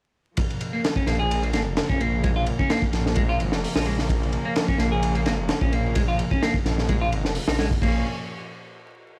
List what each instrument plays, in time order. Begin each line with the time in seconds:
0.37 string section C#3 F3 A#3, kick, ride
0.50 ride
0.61 ride
0.73 clean electric guitar A#3
0.84 snare, ride
0.96 clean electric guitar C#4, kick
1.07 detuned saw bass A#1, clean electric guitar A#3, snare, ride
1.19 clean electric guitar G#4
1.31 ride
1.43 clean electric guitar A#3, ride
1.53 detuned saw bass G#1, clean electric guitar A#3, snare, ride
1.66 detuned saw bass F1
1.77 snare, ride
1.89 detuned saw bass A#1, clean electric guitar C#4, kick
2.00 clean electric guitar A#3, ride
2.24 clean electric guitar G#3, kick, ride
2.36 clean electric guitar F4
2.46 ride
2.59 clean electric guitar C#4, kick
2.70 clean electric guitar A#3, snare, ride
2.82 kick
2.93 detuned saw bass A#1, snare, ride
3.06 snare
3.15 clean electric guitar G#3, kick, ride
3.29 clean electric guitar F4
3.40 detuned saw bass G#1, ride
3.52 detuned saw bass F1, snare
3.64 open hi-hat
3.75 detuned saw bass A#1, clean electric guitar D#4, snare
3.85 clean electric guitar G#3, ride
3.99 snare
4.09 kick, ride
4.23 ride
4.33 ride
4.45 clean electric guitar A#3
4.56 snare, ride
4.68 clean electric guitar C#4, kick
4.78 detuned saw bass A#1, clean electric guitar A#3, snare, ride
4.92 clean electric guitar G#4
5.03 ride
5.15 clean electric guitar A#3, ride
5.26 detuned saw bass G#1, clean electric guitar A#3, snare, ride
5.38 detuned saw bass F1
5.49 snare, ride
5.61 detuned saw bass A#1, clean electric guitar C#4, kick
5.72 clean electric guitar A#3, ride
5.95 clean electric guitar G#3, kick, ride
6.08 clean electric guitar F4
6.19 ride
6.31 clean electric guitar C#4, kick
6.43 clean electric guitar A#3, snare, ride
6.54 kick
6.65 detuned saw bass A#1, snare, ride
6.78 snare
6.89 clean electric guitar G#3, kick, ride
7.01 clean electric guitar F4
7.12 detuned saw bass G#1, ride
7.24 detuned saw bass F1, snare
7.35 open hi-hat
7.48 detuned saw bass A#1, clean electric guitar D#4, snare
7.59 clean electric guitar G#3, snare, ride
7.71 kick
7.82 detuned saw bass A#1, string section A#2 F3 C#4, clean electric guitar A#3, kick, crash